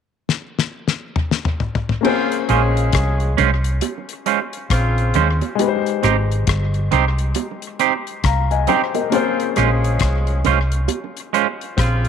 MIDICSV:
0, 0, Header, 1, 6, 480
1, 0, Start_track
1, 0, Tempo, 884956
1, 1109, Time_signature, 4, 2, 24, 8
1, 6554, End_track
2, 0, Start_track
2, 0, Title_t, "Grand piano"
2, 0, Program_c, 0, 0
2, 1090, Note_on_c, 0, 58, 73
2, 1100, Note_on_c, 0, 61, 66
2, 1111, Note_on_c, 0, 68, 70
2, 1121, Note_on_c, 0, 72, 80
2, 1226, Control_c, 0, 64, 127
2, 2998, Note_off_c, 0, 58, 0
2, 3003, Note_off_c, 0, 61, 0
2, 3008, Note_off_c, 0, 68, 0
2, 3012, Note_on_c, 0, 56, 80
2, 3014, Note_off_c, 0, 72, 0
2, 3024, Note_on_c, 0, 63, 70
2, 3033, Note_on_c, 0, 67, 69
2, 3037, Control_c, 0, 64, 0
2, 3044, Note_on_c, 0, 71, 63
2, 3080, Note_off_c, 0, 71, 0
2, 3080, Note_on_c, 0, 72, 76
2, 3121, Control_c, 0, 64, 127
2, 4474, Note_off_c, 0, 72, 0
2, 4474, Note_on_c, 0, 82, 65
2, 4476, Note_on_c, 0, 77, 50
2, 4613, Note_off_c, 0, 82, 0
2, 4614, Note_off_c, 0, 77, 0
2, 4617, Note_on_c, 0, 80, 64
2, 4621, Note_on_c, 0, 75, 56
2, 4705, Note_off_c, 0, 80, 0
2, 4707, Note_off_c, 0, 75, 0
2, 4713, Note_on_c, 0, 79, 68
2, 4716, Note_on_c, 0, 72, 59
2, 4852, Note_off_c, 0, 79, 0
2, 4854, Note_off_c, 0, 72, 0
2, 4854, Note_on_c, 0, 70, 50
2, 4854, Note_on_c, 0, 75, 56
2, 4920, Note_off_c, 0, 56, 0
2, 4926, Note_off_c, 0, 63, 0
2, 4930, Note_off_c, 0, 67, 0
2, 4935, Note_on_c, 0, 58, 76
2, 4946, Note_on_c, 0, 61, 64
2, 4956, Control_c, 0, 64, 0
2, 4957, Note_on_c, 0, 68, 70
2, 4967, Note_on_c, 0, 72, 81
2, 5039, Control_c, 0, 64, 127
2, 5084, Note_off_c, 0, 70, 0
2, 5084, Note_off_c, 0, 75, 0
2, 6554, Note_off_c, 0, 58, 0
2, 6554, Note_off_c, 0, 61, 0
2, 6554, Note_off_c, 0, 68, 0
2, 6554, Note_off_c, 0, 72, 0
2, 6554, End_track
3, 0, Start_track
3, 0, Title_t, "Clean electric guitar"
3, 0, Program_c, 1, 27
3, 1349, Note_on_c, 1, 56, 64
3, 1354, Note_on_c, 1, 61, 79
3, 1356, Note_on_c, 1, 65, 71
3, 1358, Note_on_c, 1, 72, 71
3, 1416, Note_off_c, 1, 56, 0
3, 1418, Note_off_c, 1, 61, 0
3, 1419, Note_off_c, 1, 65, 0
3, 1420, Note_off_c, 1, 72, 0
3, 1830, Note_on_c, 1, 56, 81
3, 1831, Note_on_c, 1, 61, 91
3, 1836, Note_on_c, 1, 65, 83
3, 1838, Note_on_c, 1, 72, 82
3, 1896, Note_off_c, 1, 56, 0
3, 1897, Note_off_c, 1, 61, 0
3, 1899, Note_off_c, 1, 65, 0
3, 1900, Note_off_c, 1, 72, 0
3, 2310, Note_on_c, 1, 56, 74
3, 2313, Note_on_c, 1, 61, 76
3, 2316, Note_on_c, 1, 65, 76
3, 2319, Note_on_c, 1, 72, 69
3, 2376, Note_off_c, 1, 56, 0
3, 2377, Note_off_c, 1, 61, 0
3, 2379, Note_off_c, 1, 65, 0
3, 2380, Note_off_c, 1, 72, 0
3, 2794, Note_on_c, 1, 56, 70
3, 2795, Note_on_c, 1, 61, 81
3, 2798, Note_on_c, 1, 65, 81
3, 2799, Note_on_c, 1, 72, 93
3, 2858, Note_off_c, 1, 56, 0
3, 2858, Note_off_c, 1, 61, 0
3, 2860, Note_off_c, 1, 65, 0
3, 2861, Note_off_c, 1, 72, 0
3, 3270, Note_on_c, 1, 60, 80
3, 3274, Note_on_c, 1, 63, 75
3, 3277, Note_on_c, 1, 67, 85
3, 3279, Note_on_c, 1, 72, 82
3, 3336, Note_off_c, 1, 60, 0
3, 3338, Note_off_c, 1, 63, 0
3, 3340, Note_off_c, 1, 67, 0
3, 3340, Note_off_c, 1, 72, 0
3, 3749, Note_on_c, 1, 60, 80
3, 3753, Note_on_c, 1, 63, 84
3, 3757, Note_on_c, 1, 67, 84
3, 3758, Note_on_c, 1, 72, 91
3, 3816, Note_off_c, 1, 60, 0
3, 3818, Note_off_c, 1, 63, 0
3, 3819, Note_off_c, 1, 67, 0
3, 3820, Note_off_c, 1, 72, 0
3, 4229, Note_on_c, 1, 60, 87
3, 4232, Note_on_c, 1, 63, 80
3, 4233, Note_on_c, 1, 67, 86
3, 4236, Note_on_c, 1, 72, 92
3, 4296, Note_off_c, 1, 60, 0
3, 4298, Note_off_c, 1, 63, 0
3, 4298, Note_off_c, 1, 67, 0
3, 4299, Note_off_c, 1, 72, 0
3, 4706, Note_on_c, 1, 60, 84
3, 4709, Note_on_c, 1, 63, 82
3, 4712, Note_on_c, 1, 67, 97
3, 4714, Note_on_c, 1, 72, 98
3, 4774, Note_off_c, 1, 60, 0
3, 4776, Note_off_c, 1, 63, 0
3, 4777, Note_off_c, 1, 67, 0
3, 4778, Note_off_c, 1, 72, 0
3, 5186, Note_on_c, 1, 56, 66
3, 5191, Note_on_c, 1, 61, 71
3, 5193, Note_on_c, 1, 65, 75
3, 5197, Note_on_c, 1, 72, 73
3, 5255, Note_off_c, 1, 56, 0
3, 5257, Note_off_c, 1, 61, 0
3, 5258, Note_off_c, 1, 65, 0
3, 5260, Note_off_c, 1, 72, 0
3, 5671, Note_on_c, 1, 56, 84
3, 5674, Note_on_c, 1, 61, 86
3, 5675, Note_on_c, 1, 65, 95
3, 5678, Note_on_c, 1, 72, 91
3, 5737, Note_off_c, 1, 56, 0
3, 5739, Note_off_c, 1, 61, 0
3, 5739, Note_off_c, 1, 65, 0
3, 5741, Note_off_c, 1, 72, 0
3, 6146, Note_on_c, 1, 56, 90
3, 6148, Note_on_c, 1, 61, 82
3, 6152, Note_on_c, 1, 65, 96
3, 6154, Note_on_c, 1, 72, 89
3, 6215, Note_off_c, 1, 56, 0
3, 6216, Note_off_c, 1, 61, 0
3, 6218, Note_off_c, 1, 65, 0
3, 6219, Note_off_c, 1, 72, 0
3, 6554, End_track
4, 0, Start_track
4, 0, Title_t, "Horn section"
4, 0, Program_c, 2, 61
4, 1102, Note_on_c, 2, 49, 92
4, 1102, Note_on_c, 2, 60, 96
4, 1104, Note_on_c, 2, 53, 87
4, 1104, Note_on_c, 2, 65, 94
4, 1297, Note_off_c, 2, 49, 0
4, 1297, Note_off_c, 2, 60, 0
4, 1298, Note_off_c, 2, 53, 0
4, 1298, Note_off_c, 2, 65, 0
4, 1349, Note_on_c, 2, 53, 71
4, 1349, Note_on_c, 2, 56, 74
4, 1349, Note_on_c, 2, 68, 80
4, 1350, Note_on_c, 2, 61, 73
4, 1807, Note_off_c, 2, 53, 0
4, 1807, Note_off_c, 2, 56, 0
4, 1807, Note_off_c, 2, 68, 0
4, 1808, Note_off_c, 2, 61, 0
4, 2546, Note_on_c, 2, 49, 81
4, 2548, Note_on_c, 2, 53, 75
4, 2548, Note_on_c, 2, 60, 77
4, 2548, Note_on_c, 2, 65, 81
4, 2914, Note_off_c, 2, 49, 0
4, 2915, Note_off_c, 2, 53, 0
4, 2915, Note_off_c, 2, 60, 0
4, 2915, Note_off_c, 2, 65, 0
4, 4939, Note_on_c, 2, 53, 87
4, 4939, Note_on_c, 2, 65, 94
4, 4943, Note_on_c, 2, 60, 92
4, 4944, Note_on_c, 2, 49, 95
4, 5136, Note_off_c, 2, 53, 0
4, 5136, Note_off_c, 2, 65, 0
4, 5138, Note_off_c, 2, 60, 0
4, 5139, Note_off_c, 2, 49, 0
4, 5186, Note_on_c, 2, 56, 72
4, 5186, Note_on_c, 2, 68, 78
4, 5187, Note_on_c, 2, 61, 78
4, 5188, Note_on_c, 2, 53, 73
4, 5647, Note_off_c, 2, 56, 0
4, 5647, Note_off_c, 2, 61, 0
4, 5647, Note_off_c, 2, 68, 0
4, 5648, Note_off_c, 2, 53, 0
4, 6382, Note_on_c, 2, 53, 76
4, 6382, Note_on_c, 2, 65, 83
4, 6383, Note_on_c, 2, 49, 77
4, 6385, Note_on_c, 2, 60, 69
4, 6554, Note_off_c, 2, 49, 0
4, 6554, Note_off_c, 2, 53, 0
4, 6554, Note_off_c, 2, 60, 0
4, 6554, Note_off_c, 2, 65, 0
4, 6554, End_track
5, 0, Start_track
5, 0, Title_t, "Fingered electric bass"
5, 0, Program_c, 3, 33
5, 1354, Note_on_c, 3, 34, 90
5, 1574, Note_off_c, 3, 34, 0
5, 1594, Note_on_c, 3, 36, 84
5, 1814, Note_off_c, 3, 36, 0
5, 1838, Note_on_c, 3, 36, 81
5, 2056, Note_off_c, 3, 36, 0
5, 2553, Note_on_c, 3, 34, 91
5, 2773, Note_off_c, 3, 34, 0
5, 2795, Note_on_c, 3, 39, 85
5, 2929, Note_off_c, 3, 39, 0
5, 3275, Note_on_c, 3, 32, 94
5, 3494, Note_off_c, 3, 32, 0
5, 3513, Note_on_c, 3, 31, 91
5, 3734, Note_off_c, 3, 31, 0
5, 3756, Note_on_c, 3, 36, 82
5, 3975, Note_off_c, 3, 36, 0
5, 4471, Note_on_c, 3, 36, 91
5, 4692, Note_off_c, 3, 36, 0
5, 5195, Note_on_c, 3, 34, 85
5, 5415, Note_off_c, 3, 34, 0
5, 5431, Note_on_c, 3, 36, 88
5, 5653, Note_off_c, 3, 36, 0
5, 5674, Note_on_c, 3, 36, 90
5, 5894, Note_off_c, 3, 36, 0
5, 6390, Note_on_c, 3, 34, 98
5, 6554, Note_off_c, 3, 34, 0
5, 6554, End_track
6, 0, Start_track
6, 0, Title_t, "Drums"
6, 156, Note_on_c, 9, 38, 60
6, 211, Note_off_c, 9, 38, 0
6, 318, Note_on_c, 9, 38, 63
6, 372, Note_off_c, 9, 38, 0
6, 475, Note_on_c, 9, 38, 68
6, 530, Note_off_c, 9, 38, 0
6, 628, Note_on_c, 9, 45, 89
6, 683, Note_off_c, 9, 45, 0
6, 713, Note_on_c, 9, 38, 73
6, 767, Note_off_c, 9, 38, 0
6, 787, Note_on_c, 9, 45, 96
6, 841, Note_off_c, 9, 45, 0
6, 868, Note_on_c, 9, 43, 78
6, 923, Note_off_c, 9, 43, 0
6, 950, Note_on_c, 9, 43, 94
6, 1004, Note_off_c, 9, 43, 0
6, 1027, Note_on_c, 9, 43, 88
6, 1081, Note_off_c, 9, 43, 0
6, 1109, Note_on_c, 9, 60, 71
6, 1110, Note_on_c, 9, 49, 76
6, 1163, Note_off_c, 9, 60, 0
6, 1164, Note_off_c, 9, 49, 0
6, 1256, Note_on_c, 9, 42, 55
6, 1311, Note_off_c, 9, 42, 0
6, 1350, Note_on_c, 9, 42, 60
6, 1354, Note_on_c, 9, 60, 45
6, 1404, Note_off_c, 9, 42, 0
6, 1408, Note_off_c, 9, 60, 0
6, 1502, Note_on_c, 9, 42, 52
6, 1557, Note_off_c, 9, 42, 0
6, 1587, Note_on_c, 9, 42, 92
6, 1591, Note_on_c, 9, 36, 106
6, 1599, Note_on_c, 9, 37, 111
6, 1641, Note_off_c, 9, 42, 0
6, 1645, Note_off_c, 9, 36, 0
6, 1653, Note_off_c, 9, 37, 0
6, 1735, Note_on_c, 9, 42, 38
6, 1790, Note_off_c, 9, 42, 0
6, 1834, Note_on_c, 9, 42, 72
6, 1835, Note_on_c, 9, 61, 70
6, 1888, Note_off_c, 9, 42, 0
6, 1889, Note_off_c, 9, 61, 0
6, 1976, Note_on_c, 9, 42, 55
6, 2030, Note_off_c, 9, 42, 0
6, 2068, Note_on_c, 9, 42, 85
6, 2073, Note_on_c, 9, 60, 66
6, 2122, Note_off_c, 9, 42, 0
6, 2127, Note_off_c, 9, 60, 0
6, 2217, Note_on_c, 9, 42, 53
6, 2272, Note_off_c, 9, 42, 0
6, 2311, Note_on_c, 9, 42, 63
6, 2365, Note_off_c, 9, 42, 0
6, 2457, Note_on_c, 9, 42, 44
6, 2511, Note_off_c, 9, 42, 0
6, 2551, Note_on_c, 9, 36, 104
6, 2552, Note_on_c, 9, 42, 106
6, 2557, Note_on_c, 9, 37, 107
6, 2605, Note_off_c, 9, 36, 0
6, 2606, Note_off_c, 9, 42, 0
6, 2611, Note_off_c, 9, 37, 0
6, 2700, Note_on_c, 9, 42, 39
6, 2755, Note_off_c, 9, 42, 0
6, 2787, Note_on_c, 9, 42, 61
6, 2801, Note_on_c, 9, 61, 73
6, 2841, Note_off_c, 9, 42, 0
6, 2855, Note_off_c, 9, 61, 0
6, 2936, Note_on_c, 9, 42, 50
6, 2939, Note_on_c, 9, 60, 57
6, 2991, Note_off_c, 9, 42, 0
6, 2994, Note_off_c, 9, 60, 0
6, 3033, Note_on_c, 9, 42, 82
6, 3034, Note_on_c, 9, 60, 70
6, 3087, Note_off_c, 9, 42, 0
6, 3088, Note_off_c, 9, 60, 0
6, 3180, Note_on_c, 9, 42, 54
6, 3234, Note_off_c, 9, 42, 0
6, 3272, Note_on_c, 9, 42, 66
6, 3277, Note_on_c, 9, 37, 53
6, 3279, Note_on_c, 9, 60, 49
6, 3326, Note_off_c, 9, 42, 0
6, 3331, Note_off_c, 9, 37, 0
6, 3334, Note_off_c, 9, 60, 0
6, 3425, Note_on_c, 9, 42, 49
6, 3479, Note_off_c, 9, 42, 0
6, 3509, Note_on_c, 9, 42, 90
6, 3512, Note_on_c, 9, 36, 103
6, 3522, Note_on_c, 9, 37, 115
6, 3563, Note_off_c, 9, 42, 0
6, 3566, Note_off_c, 9, 36, 0
6, 3576, Note_off_c, 9, 37, 0
6, 3655, Note_on_c, 9, 42, 43
6, 3710, Note_off_c, 9, 42, 0
6, 3751, Note_on_c, 9, 42, 74
6, 3752, Note_on_c, 9, 61, 68
6, 3806, Note_off_c, 9, 42, 0
6, 3807, Note_off_c, 9, 61, 0
6, 3897, Note_on_c, 9, 42, 51
6, 3951, Note_off_c, 9, 42, 0
6, 3984, Note_on_c, 9, 42, 93
6, 3991, Note_on_c, 9, 60, 70
6, 4038, Note_off_c, 9, 42, 0
6, 4045, Note_off_c, 9, 60, 0
6, 4134, Note_on_c, 9, 42, 56
6, 4188, Note_off_c, 9, 42, 0
6, 4228, Note_on_c, 9, 42, 68
6, 4282, Note_off_c, 9, 42, 0
6, 4377, Note_on_c, 9, 42, 46
6, 4431, Note_off_c, 9, 42, 0
6, 4468, Note_on_c, 9, 42, 102
6, 4469, Note_on_c, 9, 36, 104
6, 4472, Note_on_c, 9, 37, 108
6, 4522, Note_off_c, 9, 42, 0
6, 4524, Note_off_c, 9, 36, 0
6, 4527, Note_off_c, 9, 37, 0
6, 4616, Note_on_c, 9, 42, 41
6, 4670, Note_off_c, 9, 42, 0
6, 4703, Note_on_c, 9, 42, 64
6, 4714, Note_on_c, 9, 61, 77
6, 4757, Note_off_c, 9, 42, 0
6, 4769, Note_off_c, 9, 61, 0
6, 4852, Note_on_c, 9, 42, 53
6, 4852, Note_on_c, 9, 60, 53
6, 4906, Note_off_c, 9, 42, 0
6, 4906, Note_off_c, 9, 60, 0
6, 4947, Note_on_c, 9, 42, 86
6, 4947, Note_on_c, 9, 60, 70
6, 5001, Note_off_c, 9, 42, 0
6, 5001, Note_off_c, 9, 60, 0
6, 5097, Note_on_c, 9, 42, 55
6, 5151, Note_off_c, 9, 42, 0
6, 5185, Note_on_c, 9, 42, 61
6, 5190, Note_on_c, 9, 37, 61
6, 5192, Note_on_c, 9, 60, 47
6, 5239, Note_off_c, 9, 42, 0
6, 5244, Note_off_c, 9, 37, 0
6, 5246, Note_off_c, 9, 60, 0
6, 5339, Note_on_c, 9, 42, 52
6, 5393, Note_off_c, 9, 42, 0
6, 5421, Note_on_c, 9, 42, 88
6, 5428, Note_on_c, 9, 36, 106
6, 5434, Note_on_c, 9, 37, 107
6, 5476, Note_off_c, 9, 42, 0
6, 5482, Note_off_c, 9, 36, 0
6, 5488, Note_off_c, 9, 37, 0
6, 5570, Note_on_c, 9, 42, 42
6, 5624, Note_off_c, 9, 42, 0
6, 5666, Note_on_c, 9, 42, 76
6, 5666, Note_on_c, 9, 61, 72
6, 5720, Note_off_c, 9, 42, 0
6, 5720, Note_off_c, 9, 61, 0
6, 5813, Note_on_c, 9, 42, 53
6, 5867, Note_off_c, 9, 42, 0
6, 5902, Note_on_c, 9, 60, 67
6, 5904, Note_on_c, 9, 42, 94
6, 5956, Note_off_c, 9, 60, 0
6, 5958, Note_off_c, 9, 42, 0
6, 6057, Note_on_c, 9, 42, 57
6, 6111, Note_off_c, 9, 42, 0
6, 6152, Note_on_c, 9, 42, 65
6, 6206, Note_off_c, 9, 42, 0
6, 6299, Note_on_c, 9, 42, 45
6, 6353, Note_off_c, 9, 42, 0
6, 6389, Note_on_c, 9, 36, 103
6, 6391, Note_on_c, 9, 42, 102
6, 6396, Note_on_c, 9, 37, 104
6, 6443, Note_off_c, 9, 36, 0
6, 6445, Note_off_c, 9, 42, 0
6, 6450, Note_off_c, 9, 37, 0
6, 6534, Note_on_c, 9, 42, 44
6, 6554, Note_off_c, 9, 42, 0
6, 6554, End_track
0, 0, End_of_file